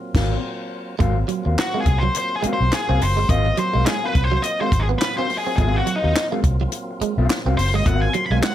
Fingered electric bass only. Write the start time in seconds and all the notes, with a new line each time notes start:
0.15 G#1
1.01 G#1
1.46 D#2
1.86 C2
2.44 muted fingered electric bass stroke
2.60 B1
2.89 C2
3.01 F#1
3.18 G1
3.29 G#1
3.75 B1
4.15 C2
4.72 G#1
5.58 G#1
6.04 D#2
6.44 C2
7.01 muted fingered electric bass stroke
7.18 B1
7.46 C2
7.57 F#1
7.73 G1
7.86 G#1
8.30 B1